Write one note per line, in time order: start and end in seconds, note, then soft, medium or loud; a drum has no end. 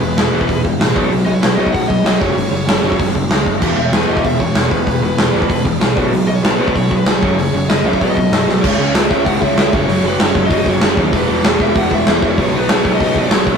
0.00 0.13 E1 medium
0.00 0.15 E2 medium
0.00 0.15 B2 medium
0.00 0.60 B4 medium
0.16 0.28 E1 medium
0.16 0.31 E2 medium
0.16 0.31 B2 medium
0.16 snare loud
0.16 open hi-hat medium
0.32 0.44 E1 medium
0.32 0.46 E2 medium
0.32 0.47 B2 medium
0.32 0.48 E3 medium
0.41 kick medium
0.48 0.61 E1 medium
0.48 0.62 E2 medium
0.48 0.62 B2 medium
0.48 kick medium
0.48 open hi-hat medium
0.64 0.76 E1 medium
0.64 0.78 E2 medium
0.64 0.78 B2 medium
0.64 kick medium
0.79 0.96 A1 medium
0.79 0.93 E2 medium
0.79 0.93 B2 medium
0.79 snare loud
0.79 open hi-hat medium
0.94 1.08 B1 medium
0.94 1.09 B2 medium
0.94 1.10 F#3 medium
0.94 1.11 B3 medium
0.94 kick loud
1.11 1.23 B1 medium
1.11 1.24 B2 medium
1.11 1.25 F#3 medium
1.11 open hi-hat medium
1.25 1.38 B1 medium
1.25 1.40 B2 medium
1.25 1.41 F#3 medium
1.25 1.34 D#5 medium
1.34 1.41 C#5 medium
1.41 1.54 B1 medium
1.41 1.56 B2 medium
1.41 1.57 F#3 medium
1.41 1.56 B4 medium
1.41 snare loud
1.41 open hi-hat medium
1.57 1.69 B1 medium
1.57 1.72 B2 medium
1.57 1.73 F#3 loud
1.57 1.73 B3 medium
1.57 1.72 D#5 medium
1.67 kick medium
1.72 1.98 B1 medium
1.72 1.88 B2 medium
1.72 1.88 F#3 medium
1.72 1.87 F#5 loud
1.72 kick medium
1.72 open hi-hat medium
1.88 2.03 B2 medium
1.88 2.03 F#3 medium
1.88 2.19 D#5 medium
1.88 kick medium
2.04 2.16 B1 medium
2.04 2.19 B2 medium
2.04 2.19 F#3 medium
2.04 snare loud
2.04 open hi-hat medium
2.19 2.33 F#1 medium
2.19 2.35 F#2 medium
2.19 2.35 C#3 medium
2.19 2.36 F#3 loud
2.19 2.49 C#5 medium
2.19 kick loud
2.36 2.48 F#1 medium
2.36 2.50 F#2 medium
2.36 2.51 C#3 medium
2.36 open hi-hat medium
2.51 2.63 F#1 medium
2.51 2.66 F#2 medium
2.51 2.66 C#3 medium
2.51 3.10 C#5 medium
2.66 2.79 F#1 medium
2.66 2.82 F#2 medium
2.66 2.82 C#3 medium
2.66 snare loud
2.66 open hi-hat medium
2.83 2.95 F#1 medium
2.83 2.98 F#2 medium
2.83 2.98 C#3 medium
2.83 2.99 F#3 medium
2.92 kick medium
2.99 3.11 F#1 medium
2.99 3.13 F#2 medium
2.99 3.14 C#3 medium
2.99 kick medium
2.99 open hi-hat medium
3.15 3.27 F#1 medium
3.15 3.29 F#2 medium
3.15 3.29 C#3 medium
3.15 kick medium
3.29 3.42 C#2 medium
3.29 3.45 F#2 medium
3.29 3.45 C#3 medium
3.29 snare loud
3.29 open hi-hat medium
3.46 3.58 F#1 medium
3.46 3.60 F#2 medium
3.46 3.61 C#3 medium
3.46 kick medium
3.62 3.74 E1 medium
3.62 3.76 E2 loud
3.62 3.76 B2 medium
3.62 3.77 E3 loud
3.62 kick medium
3.62 crash medium
3.76 3.89 E1 medium
3.76 3.91 E2 medium
3.76 3.92 B2 medium
3.76 3.86 E5 loud
3.86 3.94 C#5 medium
3.92 4.04 E1 medium
3.92 4.07 E2 medium
3.92 4.07 B2 medium
3.92 4.09 B4 medium
3.92 snare loud
3.92 open hi-hat medium
4.08 4.20 E1 medium
4.08 4.23 E2 medium
4.08 4.24 B2 medium
4.08 4.24 E3 medium
4.08 4.24 D#5 medium
4.17 kick medium
4.24 4.48 E1 medium
4.24 4.38 E2 medium
4.24 4.39 B2 medium
4.24 4.39 E5 loud
4.24 kick medium
4.24 open hi-hat medium
4.40 4.54 E2 medium
4.40 4.54 B2 medium
4.40 4.71 C#5 medium
4.40 kick medium
4.55 4.67 E1 medium
4.55 4.70 E2 medium
4.55 4.70 B2 medium
4.55 snare loud
4.55 open hi-hat medium
4.71 4.83 E1 medium
4.71 4.85 E2 medium
4.71 4.85 B2 medium
4.71 5.02 B4 medium
4.71 kick medium
4.87 4.99 E1 medium
4.87 5.01 E2 medium
4.87 5.01 B2 medium
4.87 kick medium
4.87 open hi-hat medium
5.02 5.14 E1 medium
5.02 5.17 E2 medium
5.02 5.17 B2 medium
5.02 5.62 B4 medium
5.17 5.29 E1 medium
5.17 5.31 E2 medium
5.17 5.33 B2 medium
5.17 snare loud
5.17 open hi-hat medium
5.33 5.45 E1 medium
5.33 5.47 E2 medium
5.33 5.48 B2 medium
5.33 5.49 E3 loud
5.42 kick medium
5.48 5.61 E1 medium
5.48 5.63 E2 medium
5.48 5.63 B2 medium
5.48 kick medium
5.48 open hi-hat medium
5.64 5.77 E1 medium
5.64 5.78 E2 medium
5.64 5.79 B2 medium
5.64 kick medium
5.80 5.92 B1 medium
5.80 5.94 E2 medium
5.80 5.94 B2 medium
5.80 snare loud
5.80 open hi-hat medium
5.95 6.09 B1 medium
5.95 6.10 B2 medium
5.95 6.11 F#3 medium
5.95 6.12 B3 medium
5.95 kick loud
6.12 6.24 B1 medium
6.12 6.26 B2 medium
6.12 6.26 F#3 medium
6.12 open hi-hat medium
6.27 6.39 B1 medium
6.27 6.42 B2 medium
6.27 6.42 F#3 medium
6.27 6.35 D#5 medium
6.35 6.44 C#5 medium
6.43 6.55 B1 medium
6.43 6.57 B2 medium
6.43 6.58 F#3 medium
6.43 6.59 B4 medium
6.43 snare loud
6.43 open hi-hat medium
6.58 6.71 B1 medium
6.58 6.73 B2 medium
6.58 6.73 F#3 medium
6.58 6.74 B3 medium
6.58 6.76 B4 medium
6.68 kick medium
6.74 6.99 B1 medium
6.74 6.88 B2 medium
6.74 6.89 F#3 medium
6.74 6.96 C#5 medium
6.74 kick medium
6.74 open hi-hat medium
6.89 7.04 B2 medium
6.89 7.04 F#3 medium
6.89 kick medium
6.97 7.17 B4 medium
7.06 7.18 B1 medium
7.06 7.21 B2 medium
7.06 7.21 F#3 medium
7.06 snare loud
7.06 open hi-hat medium
7.17 7.36 C#5 medium
7.22 7.34 F#1 medium
7.22 7.37 F#2 medium
7.22 7.37 C#3 medium
7.22 7.37 F#3 medium
7.22 kick loud
7.37 7.49 F#1 medium
7.37 7.52 F#2 medium
7.37 7.52 C#3 medium
7.37 7.69 C#5 medium
7.37 open hi-hat medium
7.53 7.65 F#1 medium
7.53 7.68 F#2 medium
7.53 7.68 C#3 medium
7.68 7.80 F#1 medium
7.68 7.83 F#2 medium
7.68 7.84 C#3 medium
7.68 7.85 D#5 loud
7.68 snare loud
7.68 open hi-hat medium
7.83 7.96 C#2 medium
7.83 7.99 F#2 medium
7.83 7.99 C#3 medium
7.83 7.99 F#3 loud
7.83 8.00 E5 loud
7.93 kick medium
8.00 8.13 B1 medium
8.00 8.14 B2 medium
8.00 8.15 F#3 medium
8.00 8.15 B3 loud
8.00 8.44 D#5 medium
8.00 kick medium
8.00 open hi-hat medium
8.16 8.28 B1 medium
8.16 8.30 B2 medium
8.16 8.30 F#3 medium
8.16 kick medium
8.31 8.43 F#2 medium
8.31 8.45 B2 medium
8.31 8.46 F#3 medium
8.31 snare loud
8.31 open hi-hat medium
8.47 8.59 B1 medium
8.47 8.61 B2 medium
8.47 8.62 F#3 medium
8.47 snare medium
8.62 8.76 C#2 medium
8.62 8.78 C#3 loud
8.62 8.78 G#3 loud
8.62 8.77 C#4 loud
8.62 8.92 C#5 loud
8.62 kick loud
8.62 crash loud
8.78 8.91 C#2 medium
8.78 8.93 C#3 medium
8.78 8.93 G#3 medium
8.78 8.95 C#4 loud
8.94 9.07 C#2 medium
8.94 9.10 C#3 medium
8.94 9.10 G#3 medium
8.94 9.09 C#4 loud
8.94 snare loud
8.94 open hi-hat medium
9.09 9.23 C#2 medium
9.09 9.24 C#3 medium
9.09 9.25 G#3 medium
9.09 9.25 C#4 medium
9.09 9.25 E5 loud
9.09 kick loud
9.25 9.39 C#2 medium
9.25 9.41 C#3 medium
9.25 9.40 G#3 medium
9.25 9.39 C#4 loud
9.25 9.41 F#5 loud
9.25 kick loud
9.25 open hi-hat medium
9.40 9.54 C#2 medium
9.40 9.55 C#3 medium
9.40 9.56 G#3 medium
9.40 9.56 C#4 loud
9.40 9.55 E5 medium
9.40 kick medium
9.56 9.69 C#2 medium
9.56 9.71 C#3 loud
9.56 9.71 G#3 loud
9.56 9.72 C#4 loud
9.56 9.73 E5 loud
9.56 snare loud
9.56 open hi-hat medium
9.72 9.86 F#1 medium
9.72 9.87 F#2 medium
9.72 9.86 C#3 loud
9.72 9.85 F#3 loud
9.72 9.87 C#5 medium
9.72 kick loud
9.86 10.01 F#1 medium
9.86 10.02 F#2 loud
9.86 10.02 C#3 loud
9.86 10.03 F#3 loud
9.86 10.06 C#5 loud
9.86 open hi-hat medium
10.03 10.16 F#1 medium
10.03 10.19 F#2 medium
10.03 10.18 C#3 medium
10.03 10.17 F#3 medium
10.03 10.23 B4 medium
10.18 10.32 F#1 medium
10.18 10.33 F#2 loud
10.18 10.34 C#3 medium
10.18 10.35 F#3 loud
10.18 snare loud
10.18 open hi-hat medium
10.23 10.45 C#5 loud
10.35 10.48 F#1 medium
10.35 10.50 F#2 medium
10.35 10.49 C#3 medium
10.35 10.48 F#3 medium
10.35 kick medium
10.46 10.65 F#3 loud
10.46 10.68 D#5 loud
10.50 10.63 F#1 medium
10.50 10.64 F#2 medium
10.50 10.65 C#3 loud
10.50 kick loud
10.50 open hi-hat medium
10.65 10.79 F#1 medium
10.65 10.81 F#2 medium
10.65 10.80 C#3 medium
10.65 10.80 F#3 loud
10.65 10.97 C#5 loud
10.65 kick medium
10.81 10.94 F#1 medium
10.81 10.96 F#2 medium
10.81 10.97 C#3 loud
10.81 10.97 F#3 loud
10.81 snare loud
10.81 open hi-hat medium
10.97 11.10 D#2 medium
10.97 11.12 F#2 medium
10.97 11.12 C#3 medium
10.97 11.12 F#3 loud
10.97 kick loud
11.12 11.25 E1 medium
11.12 11.28 E2 medium
11.12 11.28 B2 loud
11.12 11.27 E3 loud
11.12 11.43 B4 medium
11.12 kick loud
11.12 open hi-hat medium
11.28 11.42 E1 medium
11.28 11.42 E2 medium
11.28 11.43 B2 medium
11.28 11.44 E3 loud
11.44 11.57 E1 loud
11.44 11.60 E2 loud
11.44 11.59 B2 loud
11.44 11.58 E3 loud
11.44 snare loud
11.44 open hi-hat medium
11.59 11.72 E1 medium
11.59 11.74 E2 medium
11.59 11.75 B2 medium
11.59 11.75 E3 medium
11.59 11.77 E5 loud
11.59 kick medium
11.75 11.88 E1 medium
11.75 11.91 E2 loud
11.75 11.91 B2 medium
11.75 11.90 E3 loud
11.75 11.93 F#5 loud
11.75 kick loud
11.75 open hi-hat medium
11.91 12.04 E1 medium
11.91 12.05 E2 medium
11.91 12.07 B2 medium
11.91 12.07 E3 medium
11.91 12.08 E5 loud
11.91 kick medium
12.06 12.19 E1 loud
12.06 12.22 E2 loud
12.06 12.21 B2 loud
12.06 12.20 E3 medium
12.06 12.22 E5 loud
12.06 snare loud
12.06 open hi-hat medium
12.21 12.35 E1 medium
12.21 12.37 E2 medium
12.21 12.36 B2 medium
12.21 12.36 E3 medium
12.21 kick loud
12.26 12.40 C#5 medium
12.38 12.50 B1 medium
12.38 12.53 B2 loud
12.38 12.53 F#3 loud
12.38 12.51 B3 loud
12.38 kick loud
12.38 open hi-hat medium
12.43 12.56 C#5 loud
12.52 12.65 B1 medium
12.52 12.68 B2 medium
12.52 12.68 F#3 medium
12.52 12.69 B3 medium
12.57 12.71 B4 medium
12.68 12.81 B1 medium
12.68 12.84 B2 medium
12.68 12.84 F#3 loud
12.68 12.82 B3 loud
12.68 snare loud
12.68 open hi-hat medium
12.72 12.94 C#5 loud
12.83 12.97 B1 medium
12.83 12.99 B2 medium
12.83 12.99 F#3 medium
12.83 13.00 B3 medium
12.83 kick loud
12.95 13.18 D#5 loud
13.00 13.13 B1 medium
13.00 13.16 B2 loud
13.00 13.15 F#3 loud
13.00 13.15 B3 loud
13.00 kick loud
13.00 open hi-hat medium
13.15 13.28 B1 medium
13.15 13.30 B2 medium
13.15 13.31 F#3 medium
13.15 13.31 B3 medium
13.15 13.46 C#5 medium
13.15 kick medium
13.30 13.43 B1 medium
13.30 13.47 B2 medium
13.30 13.46 F#3 loud
13.30 13.45 B3 medium
13.30 snare loud
13.30 open hi-hat medium
13.46 13.57 B1 medium
13.46 13.57 B2 medium
13.46 13.57 F#3 medium
13.46 13.57 B3 medium
13.46 kick medium